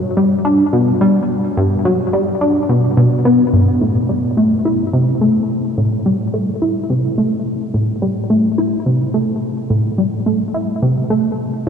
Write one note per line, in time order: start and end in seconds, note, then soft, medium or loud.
0.17 0.36 G3 medium
0.45 0.64 D4 medium
0.73 0.92 B2 medium
1.01 1.20 G3 medium
1.57 1.76 G2 medium
1.85 1.96 F#3 medium
2.13 2.32 G3 medium
2.41 2.60 D4 medium
2.69 2.88 B2 medium
2.97 3.24 B2 loud
3.25 3.44 B3 medium
3.53 3.72 G2 medium
3.81 4.00 A2 medium
4.09 4.21 G3 medium
4.37 4.56 A3 medium
4.65 4.84 E4 medium
4.93 5.12 C3 medium
5.21 5.40 A3 medium
5.77 5.97 A2 medium
6.06 6.17 G3 medium
6.34 6.53 A3 medium
6.62 6.81 E4 medium
6.90 7.09 C3 medium
7.18 7.37 A3 medium
7.74 7.93 A2 medium
8.02 8.13 G3 medium
8.30 8.49 A3 medium
8.58 8.77 E4 medium
8.86 9.05 C3 medium
9.14 9.33 A3 medium
9.70 9.89 A2 medium
9.98 10.09 G3 medium
10.26 10.45 A3 medium
10.54 10.73 E4 medium
10.82 11.01 C3 medium
11.10 11.29 A3 medium